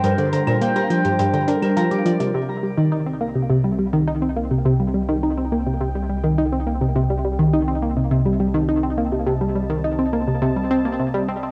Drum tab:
HH |xxxxxxxxxxxxxxxx|----------------|----------------|----------------|
CL |---x-------x----|----------------|----------------|----------------|

HH |----------------|
CL |----------------|